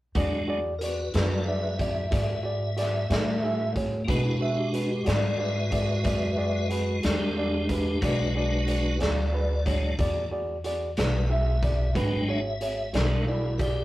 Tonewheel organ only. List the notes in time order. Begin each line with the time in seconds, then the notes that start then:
0.15 F#3 G#3 D4
0.79 F#4 A#4
0.83 B4
1.14 F#4 D5
1.46 B4 E5
1.81 E5
4.05 G#3 A#3 F#4
4.09 B3 D4
4.25 E4
4.41 B4
4.57 G4
4.75 D4
4.91 G4
5.08 D5
5.40 B4 E5
7.01 D4 F#4 G4
7.37 D4 G4
7.69 D4 G4
8.01 F#3 G#3 D4 F#4 B4
8.37 F#4 B4
8.69 F#4 B4
9.02 D5
9.66 F#3 G#3 D4
10.97 B4
11.30 E5
11.96 F#3 G#3 D4 G5
12.29 E5
12.96 F#3 G#3 D4
13.29 E4
13.58 F#4
13.62 G4